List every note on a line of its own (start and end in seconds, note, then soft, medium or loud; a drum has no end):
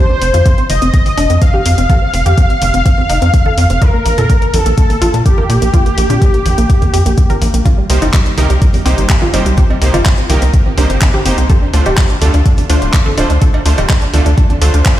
0.00 0.60 C5 loud
0.10 0.17 C4 medium
0.22 0.30 F1 medium
0.22 0.30 C4 medium
0.22 open hi-hat loud
0.34 0.42 F2 medium
0.34 0.41 F4 medium
0.34 closed hi-hat soft
0.34 high conga medium
0.46 0.54 C4 medium
0.46 kick loud
0.46 closed hi-hat medium
0.58 0.65 C4 medium
0.58 closed hi-hat soft
0.70 0.78 F1 medium
0.70 1.32 D#5 loud
0.70 open hi-hat loud
0.70 high conga medium
0.82 0.90 F1 medium
0.82 0.89 C4 medium
0.82 closed hi-hat soft
0.94 1.02 C4 medium
0.94 kick loud
0.94 closed hi-hat medium
1.06 1.13 C4 medium
1.06 open hi-hat medium
1.06 high conga medium
1.18 1.26 F1 medium
1.18 1.25 D4 medium
1.18 open hi-hat loud
1.30 1.38 F2 medium
1.30 1.37 C4 medium
1.30 closed hi-hat soft
1.42 1.49 C4 medium
1.42 3.83 F5 loud
1.42 kick loud
1.42 closed hi-hat medium
1.53 1.61 G4 medium
1.53 high conga medium
1.66 1.74 F2 loud
1.66 1.73 C4 medium
1.66 open hi-hat loud
1.78 1.86 F1 medium
1.78 1.85 C4 medium
1.78 closed hi-hat medium
1.89 1.97 A4 loud
1.89 kick loud
1.89 closed hi-hat medium
1.89 high conga medium
2.02 2.09 C4 medium
2.14 2.22 F1 medium
2.14 2.21 C4 medium
2.14 open hi-hat loud
2.26 2.34 F2 medium
2.26 2.33 G4 loud
2.26 closed hi-hat soft
2.26 high conga medium
2.38 2.45 C4 medium
2.38 kick loud
2.38 closed hi-hat medium
2.50 2.57 C4 medium
2.50 closed hi-hat soft
2.62 2.70 F1 medium
2.62 open hi-hat medium
2.62 high conga loud
2.74 2.82 F1 medium
2.74 2.81 C4 medium
2.74 closed hi-hat soft
2.86 2.94 C4 medium
2.86 kick loud
2.86 closed hi-hat medium
2.98 3.05 C4 medium
2.98 high conga medium
3.10 3.18 F1 medium
3.10 3.17 D#4 medium
3.10 open hi-hat loud
3.22 3.30 F2 medium
3.22 3.29 C4 medium
3.22 closed hi-hat medium
3.34 3.42 C4 medium
3.34 kick loud
3.34 closed hi-hat medium
3.46 3.53 A4 medium
3.46 high conga medium
3.58 3.66 F2 medium
3.58 3.66 C4 medium
3.58 open hi-hat medium
3.70 3.78 F1 medium
3.70 3.77 C4 medium
3.70 closed hi-hat medium
3.82 3.90 A#4 medium
3.82 4.55 A#4 loud
3.82 kick loud
3.82 closed hi-hat medium
3.82 high conga medium
3.94 4.01 A#3 medium
4.06 4.14 A#1 medium
4.06 4.13 A#3 medium
4.06 open hi-hat loud
4.18 4.26 A#2 medium
4.18 4.25 A4 medium
4.18 closed hi-hat medium
4.18 high conga medium
4.30 4.37 A#3 medium
4.30 kick loud
4.30 closed hi-hat medium
4.42 4.49 A#3 medium
4.42 closed hi-hat soft
4.54 4.62 A#1 medium
4.54 5.16 A4 loud
4.54 open hi-hat loud
4.54 high conga medium
4.66 4.74 A#1 medium
4.66 4.73 A#3 medium
4.66 closed hi-hat medium
4.78 4.86 A#3 medium
4.78 kick loud
4.78 closed hi-hat medium
4.90 4.97 A#3 medium
4.90 open hi-hat medium
4.90 high conga medium
5.02 5.10 A#1 medium
5.02 5.09 F4 loud
5.02 open hi-hat medium
5.14 5.22 A#2 medium
5.14 5.21 A#3 medium
5.14 closed hi-hat medium
5.26 5.33 A#3 medium
5.26 7.56 G4 loud
5.26 kick loud
5.26 closed hi-hat medium
5.38 5.45 A#4 loud
5.38 high conga medium
5.50 5.58 A#2 medium
5.50 5.57 A#3 medium
5.50 open hi-hat loud
5.62 5.70 A#1 medium
5.62 5.69 A#3 medium
5.62 closed hi-hat medium
5.74 5.81 F4 loud
5.74 kick loud
5.74 closed hi-hat medium
5.74 high conga medium
5.86 5.93 A#3 medium
5.86 closed hi-hat soft
5.98 6.06 A#1 medium
5.98 6.05 A#3 medium
5.98 open hi-hat loud
6.10 6.18 A#2 medium
6.10 6.17 D4 medium
6.10 closed hi-hat medium
6.10 high conga medium
6.22 6.29 A#3 medium
6.22 kick loud
6.22 closed hi-hat medium
6.34 6.41 A#3 medium
6.34 closed hi-hat soft
6.46 6.54 A#1 medium
6.46 open hi-hat medium
6.46 high conga loud
6.58 6.66 A#1 medium
6.58 6.65 A#3 medium
6.58 closed hi-hat medium
6.70 6.77 A#3 medium
6.70 kick loud
6.70 closed hi-hat medium
6.81 6.89 A#3 medium
6.81 kick medium
6.81 closed hi-hat soft
6.81 high conga medium
6.94 7.02 F2 medium
6.94 7.01 G4 medium
6.94 open hi-hat medium
7.06 7.14 A#1 medium
7.06 7.13 A#3 medium
7.06 closed hi-hat medium
7.18 7.25 A#3 medium
7.18 kick loud
7.18 closed hi-hat medium
7.30 7.37 A#4 loud
7.30 closed hi-hat soft
7.30 high conga medium
7.42 7.50 A#1 loud
7.42 7.49 A#3 medium
7.42 open hi-hat medium
7.54 7.62 A#1 medium
7.54 7.61 A#3 medium
7.54 closed hi-hat medium
7.65 7.73 F4 medium
7.65 kick loud
7.65 closed hi-hat medium
7.65 high conga medium
7.78 7.85 G3 medium
7.90 7.98 C2 medium
7.90 8.02 C3 medium
7.90 7.97 G3 medium
7.90 8.02 A#3 medium
7.90 8.02 D#4 medium
7.90 8.02 G4 medium
7.90 8.02 C5 medium
7.90 open hi-hat loud
8.02 8.10 G1 medium
8.02 8.09 D#4 medium
8.02 closed hi-hat medium
8.02 cowbell medium
8.02 high conga medium
8.13 8.21 G3 medium
8.13 kick loud
8.13 clap loud
8.13 closed hi-hat medium
8.26 8.33 G3 medium
8.26 closed hi-hat soft
8.37 8.46 C2 medium
8.37 8.50 C3 medium
8.37 8.50 A#3 medium
8.37 8.50 D#4 medium
8.37 8.50 G4 medium
8.37 8.49 A#4 loud
8.37 open hi-hat loud
8.37 high conga loud
8.50 8.58 C2 medium
8.50 8.57 G3 medium
8.50 closed hi-hat medium
8.62 8.70 G3 medium
8.62 kick loud
8.62 closed hi-hat medium
8.73 8.81 G3 medium
8.73 open hi-hat medium
8.73 high conga medium
8.86 8.94 C2 medium
8.86 9.31 C3 medium
8.86 9.31 A#3 medium
8.86 8.93 C4 medium
8.86 9.31 D#4 medium
8.86 9.31 G4 medium
8.86 9.31 C5 medium
8.86 open hi-hat loud
8.98 9.06 G1 medium
8.98 9.05 G3 medium
8.98 closed hi-hat medium
9.09 9.17 G3 medium
9.09 kick loud
9.09 clap loud
9.09 closed hi-hat medium
9.22 9.29 F4 medium
9.22 high conga loud
9.34 9.42 G1 loud
9.34 9.45 C3 medium
9.34 9.41 G3 medium
9.34 9.46 A#3 medium
9.34 9.46 D#4 medium
9.34 9.46 G4 medium
9.34 9.46 C5 medium
9.34 open hi-hat loud
9.34 cowbell medium
9.46 9.54 C2 medium
9.46 9.53 G3 medium
9.46 closed hi-hat medium
9.57 9.65 G4 medium
9.57 kick loud
9.57 closed hi-hat medium
9.57 high conga medium
9.70 9.77 C4 medium
9.70 cowbell medium
9.82 9.90 C2 loud
9.82 9.94 C3 medium
9.82 9.94 A#3 medium
9.82 9.89 C4 medium
9.82 9.94 D#4 medium
9.82 9.94 G4 medium
9.82 9.94 C5 medium
9.82 open hi-hat loud
9.94 10.02 G1 medium
9.94 10.01 F4 loud
9.94 closed hi-hat medium
9.94 cowbell medium
9.94 high conga medium
10.05 10.13 C4 medium
10.05 kick loud
10.05 clap loud
10.05 closed hi-hat medium
10.18 10.25 C4 medium
10.18 closed hi-hat soft
10.30 10.38 C2 medium
10.30 10.42 C3 medium
10.30 10.41 A#3 medium
10.30 10.41 D#4 medium
10.30 10.41 G4 medium
10.30 10.42 A#4 medium
10.30 open hi-hat loud
10.30 high conga medium
10.42 10.50 C2 medium
10.42 10.49 C4 medium
10.42 closed hi-hat medium
10.54 10.61 C4 medium
10.54 kick loud
10.54 closed hi-hat medium
10.66 10.73 C4 medium
10.66 high conga medium
10.78 10.86 C2 medium
10.78 11.23 C3 medium
10.78 11.23 A#3 medium
10.78 10.86 D4 medium
10.78 11.23 D#4 medium
10.78 11.23 G4 medium
10.78 11.23 C5 medium
10.78 open hi-hat loud
10.90 10.98 G1 medium
10.90 10.97 C4 medium
10.90 closed hi-hat medium
11.01 11.09 C4 medium
11.01 kick loud
11.01 clap loud
11.01 closed hi-hat medium
11.14 11.21 G4 loud
11.14 high conga medium
11.26 11.34 G1 loud
11.26 11.38 A#3 medium
11.26 11.34 C4 medium
11.26 11.38 D#4 medium
11.26 11.38 G4 medium
11.26 11.38 C5 medium
11.26 open hi-hat loud
11.38 11.46 C2 medium
11.38 11.45 C4 medium
11.38 closed hi-hat medium
11.50 11.58 A4 loud
11.50 kick loud
11.50 closed hi-hat medium
11.50 high conga medium
11.62 11.69 D4 medium
11.74 11.82 D2 medium
11.74 11.86 D3 medium
11.74 11.86 A3 medium
11.74 11.82 D4 medium
11.74 11.86 D4 medium
11.74 11.86 F4 medium
11.74 11.86 C5 medium
11.74 open hi-hat loud
11.86 11.94 D1 medium
11.86 11.93 G4 medium
11.86 closed hi-hat soft
11.86 cowbell medium
11.86 high conga medium
11.97 12.06 D4 medium
11.97 kick loud
11.97 clap loud
11.97 closed hi-hat medium
12.10 12.17 D4 medium
12.10 closed hi-hat soft
12.22 12.30 D2 medium
12.22 12.34 D3 medium
12.22 12.34 A3 medium
12.22 12.33 D4 medium
12.22 12.34 F4 medium
12.22 12.34 A4 loud
12.22 open hi-hat loud
12.22 high conga medium
12.34 12.42 D2 medium
12.34 12.41 D4 medium
12.34 closed hi-hat soft
12.46 12.54 D4 medium
12.46 kick loud
12.46 closed hi-hat medium
12.57 12.65 D4 medium
12.57 open hi-hat medium
12.57 high conga medium
12.70 12.78 D2 medium
12.70 13.15 D3 medium
12.70 13.15 A3 medium
12.70 12.77 D4 medium
12.70 13.15 D4 medium
12.70 13.15 F4 medium
12.70 13.15 C5 medium
12.70 open hi-hat loud
12.82 12.90 D1 medium
12.82 12.89 D4 medium
12.82 closed hi-hat soft
12.93 13.02 D4 medium
12.93 kick loud
12.93 clap loud
12.93 closed hi-hat medium
13.06 13.13 A4 loud
13.06 high conga medium
13.18 13.26 D1 medium
13.18 13.30 D3 medium
13.18 13.30 A3 medium
13.18 13.25 D4 medium
13.18 13.30 D4 medium
13.18 13.30 F4 medium
13.18 13.30 C5 medium
13.18 open hi-hat loud
13.18 cowbell medium
13.30 13.38 D2 medium
13.30 13.37 D4 medium
13.30 closed hi-hat medium
13.42 13.49 A4 medium
13.42 kick loud
13.42 closed hi-hat medium
13.42 high conga medium
13.54 13.61 D4 medium
13.54 cowbell medium
13.66 13.74 D2 loud
13.66 13.78 D3 medium
13.66 13.78 A3 medium
13.66 13.78 D4 medium
13.66 13.74 D4 medium
13.66 13.78 F4 medium
13.66 13.78 C5 medium
13.66 open hi-hat loud
13.78 13.86 D1 medium
13.78 13.85 G4 medium
13.78 closed hi-hat soft
13.78 cowbell medium
13.78 high conga medium
13.89 13.98 D4 medium
13.89 kick loud
13.89 clap loud
13.89 closed hi-hat medium
14.02 14.09 D4 medium
14.02 closed hi-hat soft
14.14 14.22 D2 medium
14.14 14.26 D3 medium
14.14 14.26 A3 medium
14.14 14.26 D4 medium
14.14 14.26 F4 medium
14.14 14.26 A4 loud
14.14 open hi-hat loud
14.14 high conga medium
14.26 14.34 D2 medium
14.26 14.33 D4 medium
14.26 closed hi-hat soft
14.38 14.45 D4 medium
14.38 kick loud
14.38 closed hi-hat medium
14.50 14.57 D4 medium
14.50 closed hi-hat soft
14.50 high conga medium
14.62 14.70 D2 medium
14.62 15.00 D3 medium
14.62 15.00 A3 medium
14.62 15.00 D4 medium
14.62 15.00 F4 medium
14.62 14.69 A4 medium
14.62 15.00 C5 medium
14.62 open hi-hat loud
14.74 14.82 D2 medium
14.74 14.81 D4 medium
14.74 closed hi-hat soft
14.85 14.94 D4 medium
14.85 kick loud
14.85 clap loud
14.85 closed hi-hat medium